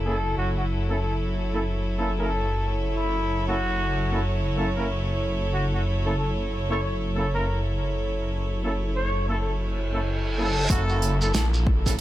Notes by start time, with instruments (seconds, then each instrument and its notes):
Already playing: detuned saw bass F#1, string section F#3 A#3 E4 A4
0.05 horn section A#3 C#4 E4 A4, trumpet A4
0.37 detuned saw bass F#1, trumpet F#4, string section C#5
0.57 trumpet F#4
0.89 horn section A#3 C#4 E4 A4, trumpet A4
1.02 trumpet A4
1.54 horn section A#3 C#4 E4 A4
1.99 horn section A#3 C#4 E4 A4
2.18 horn section A#3 C#4 E4 A#4, trumpet A4
2.96 trumpet E4
3.47 horn section A#3 C#4 E4 A4, trumpet F#4
4.12 horn section A#3 C#4 E4 A4
4.57 horn section A#3 C#4 E4 A4
4.76 horn section A#3 C#4 E4 A#4
5.54 trumpet F#4
5.74 trumpet F#4
6.06 horn section A#3 C#4 E4 A4, trumpet A4
6.18 trumpet A4
6.70 horn section A#3 C#4 E4 A4, trumpet C#5
6.83 trumpet C#5
7.15 horn section A#3 C#4 E4 A4
7.35 horn section A#3 C#4 E4 A#4, trumpet A#4
7.47 trumpet A#4
8.64 horn section A#3 C#4 E4 A4
8.96 trumpet C#5
9.28 horn section A#3 C#4 E4 A4, trumpet A4
9.40 trumpet A4, reverse cymbal
9.93 horn section A#3 C#4 E4 A4
10.37 horn section A#3 C#4 E4 A4, trumpet A4
10.69 detuned saw bass F#1, string section F#3 A#3 E4 A4, horn section A#3 C#4 E4 A4, trumpet F#4, kick, closed hi-hat, shekere
10.89 trumpet F#4, shekere
11.02 closed hi-hat
11.21 horn section A#3 C#4 E4 A4, trumpet A4, shekere
11.34 detuned saw bass A#1, trumpet A4, snare, closed hi-hat, shekere
11.54 shekere
11.67 kick
11.86 horn section A#3 C#4 E4 A4, kick, snare, closed hi-hat, shekere